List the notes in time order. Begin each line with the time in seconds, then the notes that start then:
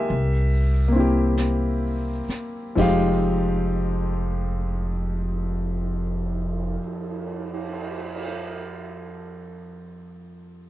Already playing: D#3 G#3 A#3 F4 G4 A#4 E5 G#5
0.10 C2, brush sweep
0.88 A#3
0.92 C4 E4
0.99 G4
1.38 brush sweep, snare, hi-hat pedal
2.28 muted upright bass stroke, snare
2.76 F1 F2 F3 G#3 D#4 G4, kick, crash
2.81 F5
3.74 cymbal swell